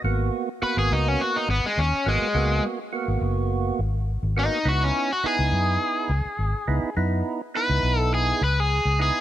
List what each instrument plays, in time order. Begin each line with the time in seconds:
0.04 fingered electric bass G#1, tonewheel organ A#3 B3 F#4
0.62 tonewheel organ A#3 B3 F#4, overdriven electric guitar B4, muted fingered electric bass stroke
0.77 fingered electric bass G#1, overdriven electric guitar G#4
0.91 fingered electric bass C#2, overdriven electric guitar D#4
1.08 overdriven electric guitar C#4
1.21 overdriven electric guitar F#4
1.36 overdriven electric guitar D#4
1.48 fingered electric bass G#1, overdriven electric guitar B3
1.66 overdriven electric guitar G#3
1.78 fingered electric bass D#2, overdriven electric guitar C#4
2.06 fingered electric bass G#1, overdriven electric guitar G#3, tonewheel organ A#3 B3 F#4
2.35 fingered electric bass C#2, tonewheel organ A#3 B3 F#4
2.93 tonewheel organ A#3 B3 F#4
3.08 fingered electric bass G#1
3.21 fingered electric bass F#1
3.79 fingered electric bass G#1
4.23 fingered electric bass G#1
4.36 tonewheel organ A#3 B3 F#4, overdriven electric guitar D#4
4.65 fingered electric bass C#2, tonewheel organ B3 D#4 E4, overdriven electric guitar F#4
4.84 overdriven electric guitar C#4
5.13 overdriven electric guitar F#4
5.24 tonewheel organ B3 D#4 E4, overdriven electric guitar G#4, muted fingered electric bass stroke
5.39 fingered electric bass C#2
5.52 fingered electric bass F#2
6.09 fingered electric bass C#2
6.25 muted fingered electric bass stroke
6.39 fingered electric bass G#1
6.54 muted fingered electric bass stroke
6.68 fingered electric bass C#2, tonewheel organ B3 D#4 E4
6.83 muted fingered electric bass stroke
6.97 fingered electric bass F#2, tonewheel organ B3 D#4 E4
7.54 tonewheel organ B3 D#4 E4, overdriven electric guitar B4
7.70 fingered electric bass C#2
7.83 fingered electric bass B1
7.99 overdriven electric guitar A4
8.14 overdriven electric guitar G#4
8.41 fingered electric bass C#2, overdriven electric guitar B4
8.60 overdriven electric guitar G#4
8.85 fingered electric bass C#2
8.99 tonewheel organ B3 D#4 E4, overdriven electric guitar G#4